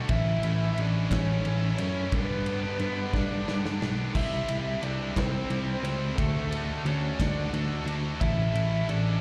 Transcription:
0.09 0.35 A1 loud
0.09 0.78 A2 medium
0.09 0.77 E3 medium
0.09 0.46 A3 medium
0.09 0.44 C#4 loud
0.09 0.73 E4 medium
0.09 0.43 E4 loud
0.09 0.79 E5 loud
0.09 kick loud
0.09 ride loud
0.43 0.69 A1 medium
0.43 0.79 C#4 medium
0.43 0.80 E4 medium
0.43 ride medium
0.47 0.78 A3 medium
0.78 1.04 A1 medium
0.78 1.45 E3 medium
0.78 1.13 A3 medium
0.78 1.12 C#4 medium
0.78 1.10 D4 medium
0.78 1.11 E4 medium
0.78 1.10 D5 medium
0.78 ride medium
1.11 1.37 A1 loud
1.11 1.46 A3 medium
1.11 1.75 C#4 medium
1.11 1.46 C#4 medium
1.11 1.48 E4 medium
1.11 1.79 C#5 medium
1.11 kick medium
1.11 snare loud
1.11 ride loud
1.45 1.71 A1 medium
1.45 2.11 E3 medium
1.45 1.81 A3 medium
1.45 1.80 C#4 medium
1.45 1.79 E4 medium
1.45 ride medium
1.78 2.05 F#2 medium
1.78 2.12 A3 medium
1.78 2.11 C#4 medium
1.78 2.12 C#4 medium
1.78 2.11 E4 medium
1.78 2.14 C#5 loud
1.78 ride medium
2.12 2.64 G2 medium
2.12 2.81 G2 medium
2.12 2.78 D3 loud
2.12 2.48 G3 loud
2.12 2.46 B3 loud
2.12 2.77 B3 medium
2.12 2.45 D4 loud
2.12 2.80 B4 loud
2.12 kick loud
2.12 ride medium
2.46 2.80 G3 medium
2.46 2.80 B3 medium
2.46 2.81 D4 medium
2.46 ride medium
2.79 3.06 G2 medium
2.79 3.46 D3 medium
2.79 3.15 G3 medium
2.79 3.14 B3 medium
2.79 3.13 B3 medium
2.79 3.12 D4 medium
2.79 3.14 B4 medium
2.79 ride medium
3.13 3.39 G2 loud
3.13 3.47 G3 medium
3.13 3.47 B3 medium
3.13 3.48 D4 medium
3.13 3.87 D4 medium
3.13 3.87 D5 medium
3.13 kick medium
3.13 snare medium
3.47 3.74 G2 medium
3.47 4.13 D3 medium
3.47 3.82 G3 medium
3.47 3.80 B3 medium
3.47 3.79 D4 medium
3.47 snare medium
3.65 snare medium
3.80 4.08 B1 medium
3.80 4.13 G3 medium
3.80 4.14 B3 medium
3.80 4.13 D4 medium
3.80 snare loud
4.14 4.41 C2 loud
4.14 4.81 C3 loud
4.14 4.50 G3 loud
4.14 4.49 C4 loud
4.14 4.49 E4 loud
4.14 4.80 E4 medium
4.14 4.86 E5 loud
4.14 kick loud
4.14 crash loud
4.48 4.75 C2 medium
4.48 4.83 G3 medium
4.48 4.83 C4 medium
4.48 4.85 E4 medium
4.48 ride medium
4.82 5.09 C2 medium
4.82 5.49 C3 medium
4.82 5.17 G3 medium
4.82 5.17 C4 medium
4.82 5.14 D4 medium
4.82 5.16 E4 medium
4.82 5.17 D5 medium
4.82 ride medium
5.16 5.42 C2 medium
5.16 5.50 G3 medium
5.16 5.81 C4 medium
5.16 5.51 C4 medium
5.16 5.52 E4 medium
5.16 5.81 C5 medium
5.16 kick medium
5.16 snare loud
5.16 ride loud
5.49 5.76 C2 medium
5.49 6.16 C3 medium
5.49 5.84 G3 medium
5.49 5.83 C4 medium
5.49 5.83 E4 medium
5.49 ride medium
5.83 6.09 C#2 medium
5.83 6.17 G3 medium
5.83 6.16 C4 medium
5.83 6.17 C4 medium
5.83 6.17 E4 medium
5.83 6.16 C5 medium
5.83 ride medium
6.15 6.70 D2 loud
6.15 6.85 D3 medium
6.15 6.81 A3 medium
6.15 6.84 A3 loud
6.15 6.51 D4 loud
6.15 6.51 F#4 loud
6.15 6.80 A4 medium
6.15 6.50 A4 loud
6.15 kick loud
6.15 ride loud
6.50 6.84 D4 medium
6.50 6.85 F#4 medium
6.50 6.86 A4 medium
6.50 ride medium
6.84 7.11 D2 loud
6.84 7.52 A3 medium
6.84 7.18 C#4 medium
6.84 7.20 D4 medium
6.84 7.19 F#4 medium
6.84 7.19 A4 medium
6.84 7.21 C#5 medium
6.84 ride medium
7.19 7.46 D2 loud
7.19 7.52 D4 medium
7.19 7.93 D4 medium
7.19 7.54 F#4 medium
7.19 7.55 A4 medium
7.19 7.93 D5 loud
7.19 kick medium
7.19 snare loud
7.19 ride loud
7.53 7.79 D2 medium
7.53 8.21 A3 medium
7.53 7.88 D4 medium
7.53 7.86 F#4 medium
7.53 7.85 A4 medium
7.53 ride medium
7.86 8.12 D2 medium
7.86 8.20 D4 medium
7.86 8.19 F#4 medium
7.86 8.23 A4 medium
7.86 ride medium
8.20 8.47 A1 medium
8.20 9.21 A2 medium
8.20 9.21 E3 loud
8.20 8.56 A3 medium
8.20 8.55 C#4 loud
8.20 8.85 E4 medium
8.20 8.55 E4 loud
8.20 8.53 A4 loud
8.20 8.85 E5 loud
8.20 kick loud
8.20 ride loud
8.54 8.81 A1 medium
8.54 8.87 A3 medium
8.54 8.88 C#4 medium
8.54 8.89 E4 medium
8.54 8.90 A4 medium
8.54 ride medium
8.88 9.15 A1 medium
8.88 9.21 A3 medium
8.88 9.21 C#4 medium
8.88 9.20 D4 medium
8.88 9.21 E4 medium
8.88 9.21 A4 medium
8.88 9.19 D5 medium
8.88 ride medium

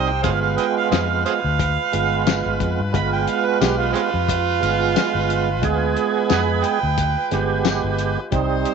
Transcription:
0.00 0.26 C2 loud
0.00 0.11 G3 medium
0.00 0.11 C4 medium
0.00 0.12 D#4 medium
0.00 0.22 D#4 medium
0.00 0.22 G4 medium
0.00 0.22 C5 loud
0.00 0.11 D#5 loud
0.09 0.22 G5 loud
0.23 0.56 G1 medium
0.23 1.40 G#3 medium
0.23 8.29 G#3 medium
0.23 1.41 B3 medium
0.23 8.29 F4 medium
0.23 1.41 F4 medium
0.23 0.31 G#4 medium
0.23 8.29 B4 medium
0.23 0.31 C5 medium
0.23 0.41 F5 medium
0.23 kick loud
0.23 closed hi-hat medium
0.42 0.57 F5 medium
0.57 0.66 B4 medium
0.57 0.65 D#5 medium
0.57 0.75 G5 medium
0.57 closed hi-hat medium
0.77 0.91 F5 medium
0.91 1.24 F2 loud
0.91 0.99 G#4 medium
0.91 0.99 C5 medium
0.91 1.24 F5 medium
0.91 snare loud
0.91 closed hi-hat medium
0.91 tambourine loud
1.25 1.32 G#4 medium
1.25 1.32 C5 medium
1.25 2.56 F5 loud
1.25 closed hi-hat medium
1.44 1.76 D2 medium
1.59 kick medium
1.59 closed hi-hat medium
1.92 2.43 G1 medium
1.92 2.81 G#3 medium
1.92 2.81 B3 medium
1.92 2.82 F4 medium
1.92 closed hi-hat medium
2.27 snare loud
2.27 closed hi-hat medium
2.27 tambourine loud
2.46 2.60 G1 medium
2.60 2.78 F2 medium
2.60 kick medium
2.60 closed hi-hat medium
2.80 2.93 G2 medium
2.93 3.26 G1 loud
2.93 4.10 G#3 medium
2.93 4.10 B3 medium
2.93 4.11 F4 medium
2.93 3.12 B5 medium
2.93 kick loud
2.93 closed hi-hat medium
3.13 3.29 G5 medium
3.28 3.47 F5 medium
3.28 closed hi-hat medium
3.46 3.60 B4 medium
3.61 3.93 B1 medium
3.61 3.77 G4 medium
3.61 snare medium
3.61 closed hi-hat medium
3.61 tambourine loud
3.78 3.92 F4 medium
3.93 4.01 G#3 medium
3.93 3.99 C4 medium
3.93 5.92 F4 loud
3.93 closed hi-hat medium
4.14 4.59 F2 medium
4.29 kick medium
4.29 closed hi-hat medium
4.60 4.94 G1 medium
4.60 5.49 G#3 medium
4.60 5.50 B3 medium
4.60 5.50 F4 medium
4.60 closed hi-hat medium
4.96 snare loud
4.96 closed hi-hat medium
4.96 tambourine loud
5.15 5.63 G1 medium
5.30 closed hi-hat medium
5.62 5.95 D2 loud
5.62 6.79 G#3 medium
5.62 6.79 B3 medium
5.62 6.80 G#4 loud
5.62 kick loud
5.62 closed hi-hat medium
5.96 closed hi-hat medium
6.30 6.62 F2 loud
6.30 6.41 F#5 medium
6.30 6.40 G#5 medium
6.30 6.66 B5 loud
6.30 snare loud
6.30 closed hi-hat medium
6.30 tambourine loud
6.64 7.30 G5 loud
6.64 closed hi-hat medium
6.83 7.15 D2 medium
6.98 kick medium
6.98 closed hi-hat medium
7.31 7.81 G1 medium
7.31 8.19 G#3 medium
7.31 8.19 B3 medium
7.31 8.20 G4 medium
7.31 snare soft
7.31 closed hi-hat medium
7.65 snare loud
7.65 closed hi-hat medium
7.65 tambourine loud
7.84 8.16 G1 medium
7.98 closed hi-hat medium
8.31 8.64 C2 medium
8.31 8.74 G3 medium
8.31 8.74 C4 medium
8.31 8.74 D#4 loud
8.31 8.74 D#4 medium
8.31 8.74 C5 loud
8.31 kick loud
8.31 closed hi-hat medium
8.65 closed hi-hat medium

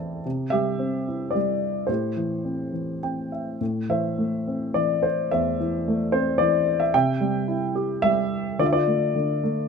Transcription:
0.00 0.20 E2 soft
0.00 0.27 E3 soft
0.00 0.22 C4 soft
0.00 0.23 E4 soft
0.00 0.27 A4 soft
0.00 0.27 C5 soft
0.00 0.27 D5 medium
0.00 0.27 E5 soft
0.00 0.27 G5 medium
0.00 0.28 A5 medium
0.26 1.85 C3 soft
0.50 1.34 G3 soft
0.50 1.30 G4 medium
0.50 1.35 E5 medium
0.79 1.85 C4 soft
1.08 1.87 E4 soft
1.31 1.85 G4 soft
1.31 1.83 D5 medium
1.35 1.87 G3 soft
1.87 3.57 A2 soft
1.87 2.99 E4 soft
1.87 2.99 G4 soft
1.87 2.97 C5 medium
2.17 2.71 E3 soft
2.45 3.02 C4 soft
2.72 3.58 E3 soft
3.03 3.59 C4 soft
3.03 3.30 G5 soft
3.32 3.59 E5 soft
3.61 5.28 A2 soft
3.89 4.74 E3 soft
3.89 4.72 C5 soft
3.89 4.78 E5 medium
4.18 5.29 A3 soft
4.48 5.57 C4 soft
4.74 5.59 E3 soft
4.74 5.04 D5 medium
5.03 5.31 C5 medium
5.31 6.90 E2 medium
5.31 6.09 C5 soft
5.31 6.16 E5 medium
5.60 6.39 E3 soft
5.88 6.91 A3 soft
6.12 6.91 C4 soft
6.12 6.40 C5 medium
6.38 6.92 E3 medium
6.38 6.80 D5 medium
6.80 6.92 E5 medium
6.94 8.55 C3 medium
6.94 8.00 E5 medium
6.94 8.07 G5 loud
7.21 8.02 G3 medium
7.48 8.55 E4 soft
7.75 8.56 G4 medium
8.02 8.57 G3 medium
8.02 8.60 E5 loud
8.59 9.14 D3 medium
8.59 8.72 F4 medium
8.59 8.65 D5 medium
8.66 8.72 E5 medium
8.73 9.68 F4 medium
8.73 9.68 D5 medium
8.87 9.42 A3 soft
9.15 9.68 D3 soft
9.44 9.68 A3 soft

